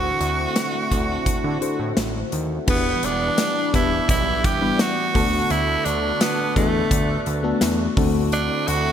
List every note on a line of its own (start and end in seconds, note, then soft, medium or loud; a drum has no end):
0.00 0.12 D2 loud
0.00 0.87 D3 medium
0.00 2.65 D3 medium
0.00 2.65 A3 medium
0.00 2.65 C4 medium
0.00 0.87 D4 medium
0.00 2.65 E4 medium
0.00 0.88 F#4 medium
0.00 1.93 F#4 loud
0.00 0.88 A4 medium
0.00 0.88 C5 medium
0.00 2.64 F#5 medium
0.21 0.47 D2 loud
0.21 closed hi-hat medium
0.56 snare loud
0.56 closed hi-hat medium
0.91 1.18 D2 medium
0.91 kick medium
0.91 closed hi-hat medium
1.26 1.34 D3 soft
1.26 kick medium
1.26 closed hi-hat medium
1.44 1.57 D3 loud
1.61 2.38 D4 medium
1.61 2.38 F#4 medium
1.61 2.38 A4 medium
1.61 2.39 C5 medium
1.61 closed hi-hat medium
1.79 1.93 A2 medium
1.97 2.24 A1 loud
1.97 snare loud
1.97 closed hi-hat medium
2.32 2.59 D#2 medium
2.32 closed hi-hat medium
2.67 2.94 E1 loud
2.67 3.69 E3 medium
2.67 5.12 E3 medium
2.67 5.12 G3 loud
2.67 3.44 B3 medium
2.67 5.12 B3 medium
2.67 3.06 B3 medium
2.67 3.44 D4 medium
2.67 5.12 D4 medium
2.67 3.44 E4 medium
2.67 3.44 G4 medium
2.67 3.45 B4 medium
2.67 5.12 F#5 medium
2.67 kick loud
2.67 crash loud
3.03 3.30 E1 loud
3.03 3.75 D4 loud
3.03 closed hi-hat medium
3.38 snare loud
3.38 closed hi-hat loud
3.38 tambourine medium
3.73 4.00 E1 medium
3.73 4.37 B3 medium
3.73 4.38 D4 medium
3.73 4.38 E4 medium
3.73 4.07 E4 loud
3.73 4.38 G4 medium
3.73 4.38 B4 medium
3.73 kick medium
3.73 closed hi-hat medium
4.09 4.46 B1 loud
4.09 4.47 E4 loud
4.09 kick loud
4.09 closed hi-hat loud
4.44 4.71 G1 medium
4.44 4.82 G4 loud
4.44 kick loud
4.44 closed hi-hat medium
4.61 5.15 G3 medium
4.61 5.14 B3 medium
4.61 5.14 D4 medium
4.61 5.15 E4 medium
4.61 5.15 B4 medium
4.79 5.52 F#4 loud
4.79 snare loud
4.79 closed hi-hat medium
4.79 tambourine medium
5.15 5.42 D2 loud
5.15 6.17 D3 medium
5.15 7.95 D3 medium
5.15 6.28 A3 medium
5.15 6.28 B3 medium
5.15 6.28 D4 medium
5.15 7.95 D4 medium
5.15 6.28 F#4 medium
5.15 8.92 F#4 medium
5.15 7.95 A4 medium
5.15 6.28 A4 medium
5.15 7.95 B4 loud
5.15 kick loud
5.15 open hi-hat medium
5.50 5.77 D2 loud
5.50 5.86 E4 loud
5.50 closed hi-hat medium
5.85 6.12 D2 loud
5.85 6.22 D4 loud
5.85 closed hi-hat medium
6.21 6.56 B3 loud
6.21 snare loud
6.21 closed hi-hat loud
6.21 tambourine medium
6.56 6.83 E2 loud
6.56 7.20 A3 medium
6.56 7.23 A3 medium
6.56 7.20 B3 medium
6.56 7.20 D4 medium
6.56 7.20 F#4 medium
6.56 7.20 A4 medium
6.56 kick medium
6.56 closed hi-hat medium
6.91 7.18 D2 loud
6.91 kick loud
6.91 closed hi-hat loud
7.26 7.53 D2 loud
7.26 closed hi-hat medium
7.43 7.96 A3 medium
7.43 7.97 B3 medium
7.43 7.96 D4 medium
7.43 7.96 F#4 medium
7.43 7.97 A4 loud
7.61 7.88 E2 loud
7.61 snare loud
7.61 closed hi-hat loud
7.61 tambourine medium
7.97 8.50 D2 loud
7.97 8.92 D3 medium
7.97 8.92 A3 loud
7.97 8.92 A3 medium
7.97 8.92 C4 medium
7.97 8.92 D4 loud
7.97 8.92 E4 medium
7.97 8.92 F#4 medium
7.97 8.92 A4 loud
7.97 kick loud
7.97 open hi-hat medium
8.32 8.69 D4 loud
8.32 closed hi-hat medium
8.68 8.92 D2 loud
8.68 8.92 F#4 loud
8.68 closed hi-hat medium